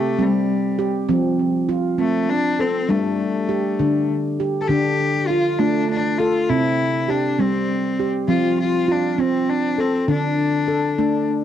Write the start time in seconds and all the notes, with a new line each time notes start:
Already playing: A3 G4
0.19 G3 C4
0.23 G3
0.79 G4
1.09 F3 C4
1.69 F4
1.98 A3 C4
2.29 D4
2.59 C4 A4
2.89 G3 A3 D4
3.49 G4
3.79 D3 D4
4.40 G4
4.61 A4
4.68 D3 D4 G4
5.27 F4
5.53 F4
5.59 A3 D4
5.90 D4
6.18 F4 A4
6.49 C3 C4 E4
7.08 D4 G4
7.39 G3 C4
8.00 G4
8.28 F3 C4 F4
8.60 F4
8.88 D4 F4
9.12 D4
9.18 C4
9.50 D4
9.78 C4 A4
10.08 D3 D4
10.68 A4
10.98 A3 D4